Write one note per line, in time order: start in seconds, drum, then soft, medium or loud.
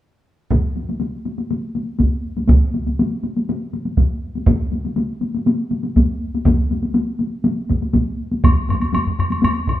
0.51 taiko medium
0.51 taiko high soft
0.76 taiko high soft
0.89 taiko high soft
1.00 taiko high soft
1.25 taiko high soft
1.38 taiko high soft
1.51 taiko high soft
1.75 taiko high soft
1.99 taiko medium
1.99 taiko high medium
2.37 taiko high soft
2.48 taiko medium
2.48 taiko high medium
2.74 taiko high soft
2.87 taiko high soft
2.99 taiko high medium
3.23 taiko high soft
3.37 taiko high soft
3.49 taiko high medium
3.73 taiko high soft
3.85 taiko high soft
3.97 taiko medium
3.97 taiko high medium
4.35 taiko high soft
4.47 taiko medium
4.47 taiko high medium
4.72 taiko high soft
4.85 taiko high soft
4.96 taiko high medium
5.21 taiko high soft
5.34 taiko high soft
5.47 taiko high medium
5.71 taiko high soft
5.83 taiko high soft
5.96 taiko medium
5.96 taiko high medium
6.35 taiko high soft
6.45 taiko medium
6.45 taiko high medium
6.71 taiko high soft
6.83 taiko high soft
6.94 taiko high medium
7.19 taiko high soft
7.44 taiko high medium
7.69 taiko medium
7.69 taiko high soft
7.82 taiko high soft
7.93 taiko medium
7.93 taiko high medium
8.32 taiko high soft
8.44 taiko medium
8.44 taiko low-mid medium
8.44 taiko high medium
8.44 high woodblock soft
8.69 taiko low-mid medium
8.69 taiko high soft
8.69 high woodblock soft
8.80 taiko high soft
8.80 high woodblock soft
8.93 taiko low-mid medium
8.93 taiko high medium
8.93 high woodblock soft
9.07 taiko low-mid medium
9.19 taiko low-mid medium
9.19 high woodblock soft
9.30 taiko high soft
9.30 high woodblock soft
9.42 taiko low-mid medium
9.42 taiko high medium
9.42 high woodblock soft
9.67 taiko medium
9.67 taiko low-mid medium
9.67 high woodblock soft